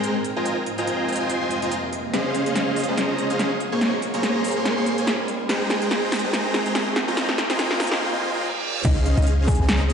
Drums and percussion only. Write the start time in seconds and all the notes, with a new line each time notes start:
0.04 closed hi-hat
0.24 closed hi-hat
0.46 closed hi-hat
0.66 closed hi-hat
0.78 closed hi-hat
0.87 closed hi-hat
1.09 closed hi-hat
1.12 closed hi-hat
1.16 closed hi-hat
1.29 closed hi-hat
1.51 closed hi-hat
1.62 closed hi-hat
1.71 closed hi-hat
1.93 closed hi-hat
2.14 snare, closed hi-hat
2.35 closed hi-hat
2.46 closed hi-hat
2.56 snare, closed hi-hat
2.76 closed hi-hat, open hi-hat
2.84 closed hi-hat
2.98 snare, closed hi-hat
3.18 closed hi-hat
3.30 closed hi-hat
3.39 snare, closed hi-hat
3.60 closed hi-hat
3.81 snare, closed hi-hat
4.02 closed hi-hat
4.14 closed hi-hat
4.23 snare, closed hi-hat
4.44 closed hi-hat, open hi-hat
4.51 closed hi-hat
4.65 snare, closed hi-hat
4.86 closed hi-hat
4.98 closed hi-hat
5.07 snare, closed hi-hat
5.28 closed hi-hat
5.49 snare, closed hi-hat
5.70 snare, closed hi-hat
5.82 closed hi-hat
5.91 snare, closed hi-hat
6.12 snare, closed hi-hat, open hi-hat
6.19 closed hi-hat
6.33 snare, closed hi-hat
6.54 snare, closed hi-hat
6.66 closed hi-hat
6.75 snare, closed hi-hat
6.96 snare, closed hi-hat
7.17 snare, closed hi-hat
7.29 snare
7.38 snare, closed hi-hat
7.50 snare, closed hi-hat
7.59 snare, closed hi-hat
7.71 snare
7.80 snare, closed hi-hat, open hi-hat
7.87 closed hi-hat
7.92 snare
8.85 kick, closed hi-hat, crash
9.06 closed hi-hat
9.17 closed hi-hat
9.22 closed hi-hat
9.27 closed hi-hat
9.48 kick, closed hi-hat, open hi-hat
9.55 closed hi-hat
9.69 snare, closed hi-hat
9.90 closed hi-hat